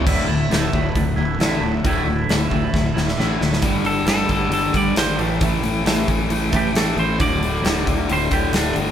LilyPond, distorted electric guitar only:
\new Staff \with { instrumentName = "Distorted electric guitar" } { \clef bass \time 4/4 \key g \mixolydian \tempo 4 = 134 <d, a, d>8 <d, a,>8 <d, a,>8 <d, a,>8 <d, a,>8 <d, a,>8 <d, a, d>8 <d, a,>8 | <d, a, d>8 <d, a,>8 <d, a,>8 <d, a,>8 <d, a,>8 <d, a,>8 <d, a, d>8 <d, a,>8 | <g, d g>8 <g, d g>8 <g, d g>8 <g, d g>8 <g, d g>8 <g, d g>8 <g, d g>8 <a, e a>8 | <a, e a>8 <a, e a>8 <a, e a>8 <a, e a>8 <a, e a>8 <a, e a>8 <a, e a>8 <a, e a>8 |
<d, a, d>8 <d, a, d>8 <d, a, d>8 <d, a, d>8 <d, a, d>8 <d, a, d>8 <d, a, d>8 <d, a, d>8 | }